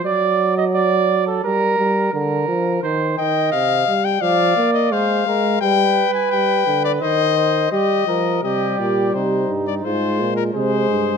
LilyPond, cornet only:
\new Staff \with { instrumentName = "Cornet" } { \time 4/4 \key c \minor \tempo 4 = 86 r1 | r8 g''8 f''8. g''16 f''8. ees''16 f''4 | g''8. aes''16 g''8. d''16 ees''4 ees''4 | ees''8 d''8 c''8. d''16 c''8. bes'16 c''4 | }